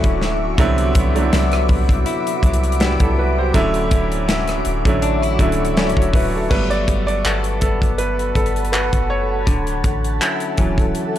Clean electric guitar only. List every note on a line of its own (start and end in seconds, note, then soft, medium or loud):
0.00 0.58 D3 medium
0.00 1.32 F#3 medium
0.00 0.67 C#4 medium
0.00 0.58 E4 medium
0.00 0.39 A4 medium
0.58 3.54 C3 medium
0.58 1.33 E4 medium
0.95 1.32 B3 medium
1.32 2.43 F#3 medium
1.32 2.79 B3 medium
1.32 2.06 E4 medium
2.06 2.81 E4 medium
2.43 2.79 F#3 medium
2.80 4.28 F#3 medium
2.80 3.63 B3 medium
2.80 3.54 E4 medium
3.54 7.04 D3 medium
3.54 4.28 E4 medium
3.91 4.28 C#4 medium
4.28 5.39 F#3 medium
4.28 5.76 C#4 medium
4.28 5.02 E4 medium
5.03 5.22 D4 medium
5.22 5.76 E4 medium
5.40 5.76 F#3 medium
5.77 6.50 F#3 medium
5.77 6.59 C#4 medium
5.77 6.59 E4 medium
6.50 9.47 G3 medium
7.25 7.61 B3 medium
7.25 8.72 F#4 medium
7.25 10.76 A4 medium
7.62 9.55 B3 medium
8.73 10.22 F#4 medium
9.47 11.19 D3 medium
10.21 10.57 F#3 medium
10.21 11.19 C#4 medium
10.21 11.19 E4 medium
10.58 11.19 F#3 medium